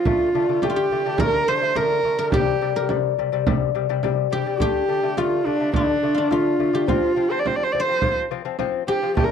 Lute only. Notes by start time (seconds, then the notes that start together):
0.06 D3 A3
0.35 D3 A3
0.49 D3 A3
0.63 D3 A3
0.92 D3 A3
1.06 D3 A3
1.20 D3 A3
1.48 D3 A3
1.62 D3 A3
1.76 D3 A3
2.04 D3 A3
2.19 D3 A3
2.33 C3 G3
2.61 C3 G3
2.76 C3 G3
2.90 C3 G3
3.19 C3 G3
3.32 C3 G3
3.47 C3 G3
3.75 C3 G3
3.89 C3 G3
4.03 C3 G3
4.32 C3 G3
4.46 C3 G3
4.60 D3 A3
4.89 D3 A3
5.03 D3 A3
5.17 D3 A3
5.46 D3 A3
5.60 D3 A3
5.74 D3 A3
6.03 D3 A3
6.17 D3 A3
6.31 D3 A3
6.59 D3 A3
6.73 D3 A3
6.88 F3 C4
7.16 F3 C4
7.30 F3 C4
7.45 F3 C4
7.74 F3 C4
7.88 F3 C4
8.02 F3 C4
8.31 F3 C4
8.45 F3 C4
8.59 F3 C4
8.88 F3 C4
9.03 F3 C4
9.17 D3 A3